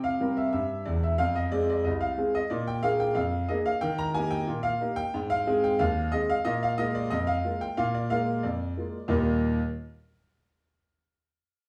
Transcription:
0.00 0.16 C3 medium
0.00 0.37 F5 medium
0.20 0.39 G3 medium
0.20 0.39 C4 medium
0.20 0.39 A#4 medium
0.37 0.51 E5 medium
0.53 0.81 G2 medium
0.53 0.86 E5 medium
0.85 1.13 E1 medium
0.85 1.13 E2 medium
0.85 1.02 D5 medium
1.03 1.20 E5 medium
1.18 1.47 F2 medium
1.18 1.35 F5 loud
1.35 1.52 D#5 medium
1.52 1.70 G#3 medium
1.52 1.71 C4 medium
1.52 1.71 G#4 medium
1.52 1.68 D5 loud
1.70 1.86 D5 medium
1.84 2.13 C2 medium
1.84 2.01 D#5 medium
2.01 2.34 F5 medium
2.18 2.36 G#3 medium
2.18 2.36 C4 medium
2.18 2.36 G#4 medium
2.35 2.51 D#5 medium
2.50 2.79 A#2 medium
2.50 2.67 D5 medium
2.67 2.84 G5 loud
2.83 3.01 A#3 medium
2.83 3.02 D4 medium
2.83 3.02 G#4 medium
2.83 3.00 F5 loud
3.00 3.16 G5 loud
3.15 3.44 F2 medium
3.15 3.48 F5 loud
3.48 3.67 A#3 medium
3.48 3.68 D4 medium
3.48 3.68 G#4 medium
3.48 3.65 D#5 medium
3.66 3.82 F5 loud
3.81 4.10 D#3 loud
3.81 3.98 G5 loud
3.98 4.15 A#5 loud
4.14 4.33 A#3 medium
4.14 4.33 D#4 medium
4.14 4.34 G4 medium
4.14 4.31 G#5 loud
4.31 4.64 G5 loud
4.47 4.75 A#2 medium
4.63 4.96 F5 loud
4.81 4.99 A#3 soft
4.81 4.99 D#4 medium
4.81 4.99 G4 medium
4.96 5.29 G5 loud
5.14 5.42 G#2 medium
5.30 5.63 F5 loud
5.47 5.65 G#3 medium
5.47 5.65 C4 medium
5.47 5.65 G#4 medium
5.64 5.80 G5 loud
5.79 6.07 D#2 medium
5.79 6.12 F5 loud
6.12 6.30 G#3 medium
6.12 6.31 C4 medium
6.12 6.31 G#4 medium
6.12 6.29 D#5 loud
6.30 6.46 F5 loud
6.45 6.73 A#2 loud
6.45 6.61 D#5 loud
6.63 6.79 F5 loud
6.78 6.96 G#3 medium
6.78 6.97 A#3 medium
6.78 6.97 F4 medium
6.78 6.95 D#5 loud
6.95 7.11 D5 loud
7.10 7.39 F2 medium
7.10 7.27 D#5 loud
7.27 7.60 F5 loud
7.44 7.62 G#3 medium
7.44 7.63 A#3 soft
7.44 7.63 F4 medium
7.61 7.77 G5 loud
7.77 8.06 A#2 loud
7.77 7.94 F5 loud
7.94 8.11 D5 medium
8.10 8.29 G#3 medium
8.10 8.29 A#3 medium
8.10 8.30 F4 medium
8.10 8.43 F5 loud
8.43 8.72 F2 medium
8.43 9.10 D5 medium
8.77 8.95 G#3 soft
8.77 8.96 A#3 soft
8.77 8.96 F4 soft
9.08 9.46 D#2 loud
9.08 9.46 A#2 medium
9.08 9.46 G3 medium
9.08 9.46 A#3 medium
9.08 9.46 D#4 medium
9.08 9.47 G4 medium
9.08 9.46 D#5 medium

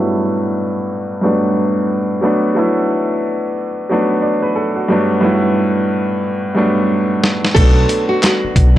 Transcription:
0.00 1.21 G2 medium
0.00 1.22 F#3 medium
0.00 1.23 A3 medium
0.00 1.24 B3 medium
0.00 1.25 D4 medium
0.00 0.86 E4 medium
1.21 1.94 G2 medium
1.21 1.94 F#3 medium
1.21 1.95 A3 medium
1.21 1.95 B3 medium
1.21 1.96 D4 medium
2.21 2.48 F#3 medium
2.21 2.49 A3 medium
2.21 2.49 B3 medium
2.21 2.50 D4 medium
2.55 3.51 F#3 medium
2.55 3.52 A3 medium
2.55 3.52 B3 medium
2.55 3.53 E4 medium
3.89 4.61 F#3 medium
3.89 4.62 A3 medium
3.89 4.62 B3 medium
3.89 4.63 D4 medium
4.22 4.42 D5 medium
4.42 4.55 B4 medium
4.56 4.76 A4 medium
4.76 5.08 F#4 medium
4.88 5.15 G2 medium
4.88 5.15 F#3 medium
4.88 5.16 A3 medium
4.88 5.16 B3 medium
4.88 5.17 D4 medium
5.21 6.17 G2 medium
5.21 6.18 F#3 medium
5.21 6.18 A3 medium
5.21 6.19 B3 medium
5.21 6.19 E4 medium
6.55 7.27 G2 medium
6.55 7.28 F#3 medium
6.55 7.28 A3 medium
6.55 7.29 B3 medium
6.55 7.29 D4 medium
7.24 snare medium
7.45 snare medium
7.54 7.83 B1 loud
7.54 8.51 F#3 medium
7.54 8.51 A3 medium
7.54 8.52 B3 medium
7.54 8.53 D4 medium
7.54 8.06 A4 loud
7.54 kick loud
7.54 closed hi-hat medium
7.54 crash medium
7.89 closed hi-hat medium
8.09 8.21 F#4 medium
8.23 8.74 F#4 medium
8.23 snare loud
8.23 clap medium
8.23 closed hi-hat medium
8.44 muted upright bass stroke soft
8.56 8.78 B1 medium
8.56 kick medium
8.56 closed hi-hat medium

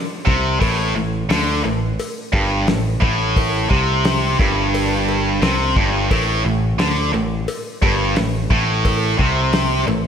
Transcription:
0.26 0.59 C2 medium
0.26 0.60 C3 medium
0.26 kick loud
0.60 0.93 A1 medium
0.60 0.94 A2 loud
0.60 kick medium
0.60 open hi-hat soft
0.60 cowbell medium
0.96 1.28 A1 medium
0.96 1.23 A2 medium
1.30 1.62 D2 loud
1.30 1.63 D3 loud
1.30 snare loud
1.30 open hi-hat medium
1.64 1.97 A1 medium
1.64 1.92 A2 medium
1.64 cowbell medium
1.99 open hi-hat medium
1.99 cowbell medium
2.33 2.65 G1 medium
2.33 2.66 G2 loud
2.33 kick loud
2.33 cowbell medium
2.67 3.00 A1 medium
2.67 2.95 A2 medium
2.67 snare loud
2.67 open hi-hat medium
2.67 cowbell medium
3.01 3.67 A1 loud
3.01 3.69 A2 loud
3.01 kick loud
3.36 kick loud
3.36 open hi-hat medium
3.36 cowbell medium
3.70 4.35 C2 medium
3.70 4.38 C3 medium
3.70 kick medium
4.05 snare loud
4.05 open hi-hat medium
4.38 5.38 G1 medium
4.38 5.41 G2 medium
4.38 kick loud
4.38 cowbell medium
4.74 open hi-hat medium
4.74 cowbell medium
5.09 cowbell medium
5.42 5.74 C2 medium
5.42 5.75 C3 loud
5.42 snare loud
5.42 open hi-hat soft
5.42 cowbell medium
5.76 6.08 G1 loud
5.76 6.10 G2 medium
5.76 kick loud
6.10 6.43 A1 medium
6.10 6.43 A2 loud
6.10 kick medium
6.10 open hi-hat soft
6.10 cowbell loud
6.45 6.77 A1 medium
6.45 6.72 A2 medium
6.79 7.11 D2 medium
6.79 7.12 D3 loud
6.79 snare loud
6.79 open hi-hat medium
7.13 7.46 A1 medium
7.13 7.41 A2 medium
7.13 cowbell medium
7.48 open hi-hat medium
7.48 cowbell loud
7.82 8.14 G1 loud
7.82 8.15 G2 loud
7.82 kick loud
7.82 cowbell medium
8.16 8.49 A1 medium
8.16 8.44 A2 medium
8.16 snare loud
8.16 open hi-hat medium
8.16 cowbell medium
8.50 9.15 A1 loud
8.50 9.18 A2 loud
8.50 kick loud
8.85 kick medium
8.85 open hi-hat medium
8.85 cowbell loud
9.19 9.84 C2 medium
9.19 9.86 C3 medium
9.19 kick medium
9.53 snare loud
9.53 open hi-hat medium
9.87 10.07 A1 medium
9.87 10.07 A2 medium
9.87 cowbell medium

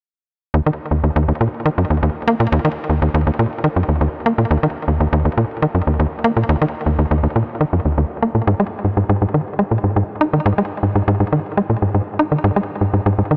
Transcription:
0.54 0.62 D#2 medium
0.66 0.71 D#3 medium
0.91 1.02 D#2 medium
1.04 1.11 D#2 medium
1.16 1.27 D#2 medium
1.28 1.33 D#2 medium
1.41 1.48 A#2 medium
1.66 1.70 D#3 medium
1.78 1.86 F#2 medium
1.90 2.02 D#2 medium
2.03 2.10 D#2 medium
2.28 2.35 A#3 medium
2.40 2.48 A#2 medium
2.52 2.60 D#2 medium
2.65 2.69 D#3 medium
2.90 3.01 D#2 medium
3.02 3.10 D#2 medium
3.14 3.26 D#2 medium
3.27 3.31 D#2 medium
3.39 3.47 A#2 medium
3.64 3.69 D#3 medium
3.76 3.84 F#2 medium
3.89 4.00 D#2 medium
4.01 4.09 D#2 medium
4.26 4.33 A#3 medium
4.38 4.46 A#2 medium
4.51 4.58 D#2 medium
4.63 4.68 D#3 medium
4.88 4.99 D#2 medium
5.00 5.08 D#2 medium
5.13 5.24 D#2 medium
5.25 5.30 D#2 medium
5.38 5.45 A#2 medium
5.62 5.67 D#3 medium
5.75 5.82 F#2 medium
5.87 5.98 D#2 medium
6.00 6.07 D#2 medium
6.24 6.32 A#3 medium
6.37 6.44 A#2 medium
6.49 6.57 D#2 medium
6.62 6.66 D#3 medium
6.86 6.98 D#2 medium
6.99 7.06 D#2 medium
7.11 7.22 D#2 medium
7.23 7.28 D#2 medium
7.36 7.43 A#2 medium
7.61 7.65 D#3 medium
7.73 7.81 F#2 medium
7.85 7.97 D#2 medium
7.98 8.05 D#2 medium
8.22 8.30 A#3 medium
8.35 8.42 A#2 medium
8.47 8.55 G#2 medium
8.60 8.64 G#3 medium
8.85 8.96 G#2 medium
8.97 9.05 G#2 medium
9.09 9.21 G#2 medium
9.22 9.26 G#2 medium
9.34 9.42 D#3 medium
9.59 9.64 G#3 medium
9.71 9.79 A#2 medium
9.84 9.95 G#2 medium
9.96 10.04 G#2 medium
10.21 10.29 D#4 medium
10.33 10.41 D#3 medium
10.46 10.53 G#2 medium
10.58 10.63 G#3 medium
10.83 10.94 G#2 medium
10.95 11.03 G#2 medium
11.08 11.19 G#2 medium
11.20 11.25 G#2 medium
11.33 11.40 D#3 medium
11.57 11.62 G#3 medium
11.70 11.77 A#2 medium
11.82 11.93 G#2 medium
11.94 12.02 G#2 medium
12.19 12.27 D#4 medium
12.32 12.39 D#3 medium
12.44 12.52 G#2 loud
12.56 12.61 G#3 medium
12.81 12.93 G#2 medium
12.94 13.01 G#2 medium
13.06 13.17 G#2 medium
13.19 13.23 G#2 medium
13.31 13.37 D#3 medium

